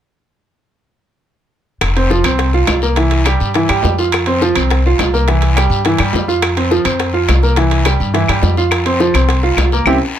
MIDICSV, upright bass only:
0, 0, Header, 1, 2, 480
1, 0, Start_track
1, 0, Tempo, 287632
1, 3036, Time_signature, 4, 2, 24, 8
1, 17008, End_track
2, 0, Start_track
2, 0, Title_t, "Upright bass"
2, 0, Program_c, 0, 32
2, 3025, Note_on_c, 0, 29, 83
2, 3700, Note_off_c, 0, 29, 0
2, 3748, Note_on_c, 0, 36, 87
2, 4423, Note_off_c, 0, 36, 0
2, 4474, Note_on_c, 0, 36, 74
2, 5587, Note_off_c, 0, 36, 0
2, 5687, Note_on_c, 0, 43, 84
2, 6131, Note_off_c, 0, 43, 0
2, 6168, Note_on_c, 0, 43, 63
2, 6388, Note_off_c, 0, 43, 0
2, 6408, Note_on_c, 0, 41, 80
2, 7515, Note_off_c, 0, 41, 0
2, 7608, Note_on_c, 0, 36, 83
2, 8276, Note_off_c, 0, 36, 0
2, 8326, Note_on_c, 0, 36, 83
2, 9435, Note_off_c, 0, 36, 0
2, 9510, Note_on_c, 0, 43, 85
2, 9963, Note_off_c, 0, 43, 0
2, 10003, Note_on_c, 0, 43, 60
2, 10226, Note_off_c, 0, 43, 0
2, 10244, Note_on_c, 0, 41, 78
2, 11352, Note_off_c, 0, 41, 0
2, 11438, Note_on_c, 0, 41, 81
2, 12108, Note_off_c, 0, 41, 0
2, 12159, Note_on_c, 0, 36, 82
2, 13267, Note_off_c, 0, 36, 0
2, 13353, Note_on_c, 0, 43, 85
2, 13800, Note_off_c, 0, 43, 0
2, 13830, Note_on_c, 0, 43, 63
2, 14051, Note_off_c, 0, 43, 0
2, 14061, Note_on_c, 0, 41, 77
2, 15174, Note_off_c, 0, 41, 0
2, 15253, Note_on_c, 0, 36, 84
2, 15929, Note_off_c, 0, 36, 0
2, 15970, Note_on_c, 0, 36, 80
2, 16424, Note_off_c, 0, 36, 0
2, 16447, Note_on_c, 0, 36, 84
2, 16635, Note_off_c, 0, 36, 0
2, 17008, End_track
0, 0, End_of_file